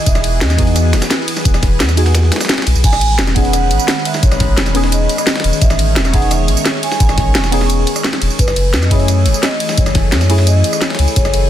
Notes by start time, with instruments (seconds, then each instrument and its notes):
Already playing: analog synth pad E3 G#4, synth stab B3 D#4 F#4 G#4
0.06 sub bass E1, analog synth pad B3, vibraphone E5, kick, closed hi-hat, tambourine
0.15 cross-stick, snare, closed hi-hat, tambourine
0.24 closed hi-hat, ride
0.41 sub bass E2, vibraphone D#5, snare, closed hi-hat, tambourine
0.50 cross-stick, snare, closed hi-hat, tambourine
0.57 synth stab B3 D#4 F#4 G#4, kick, closed hi-hat, ride
0.67 closed hi-hat
0.76 cross-stick, closed hi-hat, tambourine
0.93 sub bass E1, snare, closed hi-hat, ride, tambourine
1.02 snare, closed hi-hat, tambourine
1.10 snare, closed hi-hat, tambourine
1.28 closed hi-hat, ride
1.37 snare, tambourine
1.45 sub bass E1, kick, closed hi-hat, tambourine
1.54 cross-stick, snare, closed hi-hat, tambourine
1.63 kick, snare, closed hi-hat, ride
1.80 sub bass E2, snare, closed hi-hat, tambourine
1.89 cross-stick, snare, closed hi-hat, tambourine
1.96 synth stab B3 D#4 F#4 G#4, closed hi-hat, ride
2.06 snare, closed hi-hat
2.15 snare, closed hi-hat, tambourine
2.23 snare
2.32 snare, closed hi-hat, ride, tambourine
2.36 snare, closed hi-hat
2.41 cross-stick, snare, closed hi-hat, tambourine
2.45 snare, closed hi-hat
2.49 snare, closed hi-hat, tambourine
2.54 snare, closed hi-hat
2.58 cross-stick, snare, closed hi-hat
2.62 snare, closed hi-hat
2.67 sub bass B1, closed hi-hat, ride
2.75 sub bass B1, tambourine
2.84 sub bass A1, analog synth pad D#3 G#3 C#4 B4, vibraphone G#5, kick, closed hi-hat, tambourine, crash
2.93 cross-stick, snare, closed hi-hat, tambourine
3.01 closed hi-hat, ride
3.19 sub bass E1, snare, closed hi-hat, tambourine
3.27 cross-stick, snare, closed hi-hat, tambourine
3.35 synth stab B3 C#4 D#4 G#4, vibraphone F#5, kick, closed hi-hat, ride
3.45 closed hi-hat
3.53 cross-stick, closed hi-hat, tambourine
3.71 sub bass A1, closed hi-hat, ride, tambourine
3.79 tambourine
3.88 snare, closed hi-hat, tambourine
4.05 vibraphone E5, closed hi-hat, ride
4.14 snare, tambourine
4.23 sub bass A1, vibraphone C#5, kick, closed hi-hat, tambourine
4.32 cross-stick, snare, closed hi-hat, tambourine
4.40 kick, snare, closed hi-hat, ride
4.57 sub bass E1, snare, closed hi-hat, tambourine
4.66 cross-stick, snare, closed hi-hat, tambourine
4.74 synth stab B3 C#4 D#4 G#4, closed hi-hat, ride
4.84 snare
4.92 vibraphone D#5, closed hi-hat, tambourine
5.09 closed hi-hat, ride, tambourine
5.18 cross-stick, tambourine
5.27 snare, closed hi-hat, tambourine
5.36 cross-stick, snare, closed hi-hat
5.40 snare, closed hi-hat
5.44 sub bass E1, closed hi-hat, ride
5.53 tambourine
5.61 sub bass A1, analog synth pad C#5, vibraphone E5, kick, closed hi-hat, tambourine
5.70 cross-stick, snare, closed hi-hat, tambourine
5.79 closed hi-hat, ride
5.96 sub bass E1, snare, closed hi-hat, tambourine
6.05 cross-stick, snare, closed hi-hat, tambourine
6.12 synth stab B3 C#4 D#4 G#4, vibraphone F#5, kick, closed hi-hat, ride
6.22 closed hi-hat
6.31 vibraphone E5, cross-stick, closed hi-hat, tambourine
6.48 sub bass A1, closed hi-hat, ride, tambourine
6.57 tambourine
6.66 snare, closed hi-hat, tambourine
6.83 vibraphone G#5, closed hi-hat, ride
6.92 snare, tambourine
7.00 sub bass A1, kick, closed hi-hat, tambourine
7.09 cross-stick, snare, closed hi-hat, tambourine
7.18 kick, snare, closed hi-hat, ride
7.35 sub bass E1, snare, closed hi-hat, tambourine
7.44 cross-stick, snare, closed hi-hat, tambourine
7.51 synth stab B3 C#4 D#4 G#4, closed hi-hat, ride
7.61 snare
7.70 closed hi-hat, tambourine
7.87 closed hi-hat, ride, tambourine
7.96 cross-stick, tambourine
8.04 snare, closed hi-hat, tambourine
8.13 cross-stick, snare, closed hi-hat
8.22 sub bass E1, closed hi-hat, ride
8.30 tambourine
8.39 sub bass F#1, analog synth pad E3 A3 G#4, vibraphone B4, kick, closed hi-hat, tambourine
8.48 cross-stick, snare, closed hi-hat, tambourine
8.56 closed hi-hat, ride
8.74 sub bass F#2, snare, closed hi-hat, tambourine
8.82 vibraphone D#5, cross-stick, snare, closed hi-hat, tambourine
8.90 synth stab A3 C#4 E4 G#4, vibraphone C#5, kick, closed hi-hat, ride
9.00 closed hi-hat
9.08 cross-stick, closed hi-hat, tambourine
9.26 sub bass F#1, closed hi-hat, ride, tambourine
9.34 tambourine
9.43 snare, closed hi-hat, tambourine
9.60 closed hi-hat, ride
9.69 snare, tambourine
9.78 sub bass F#1, vibraphone C#5, kick, closed hi-hat, tambourine
9.86 cross-stick, snare, closed hi-hat, tambourine
9.95 kick, snare, closed hi-hat, ride
10.12 sub bass F#2, vibraphone C#5, snare, closed hi-hat, tambourine
10.21 cross-stick, snare, closed hi-hat, tambourine
10.29 synth stab A3 C#4 E4 G#4, closed hi-hat, ride
10.38 snare
10.47 vibraphone D#5, closed hi-hat, tambourine
10.64 closed hi-hat, ride, tambourine
10.73 cross-stick, tambourine
10.82 snare, closed hi-hat, tambourine
10.90 cross-stick, snare, closed hi-hat
10.95 snare, closed hi-hat
10.99 sub bass C#2, closed hi-hat, ride
11.08 tambourine
11.16 sub bass F#1, vibraphone C#5, kick, closed hi-hat, tambourine
11.25 cross-stick, snare, closed hi-hat, tambourine
11.34 closed hi-hat, ride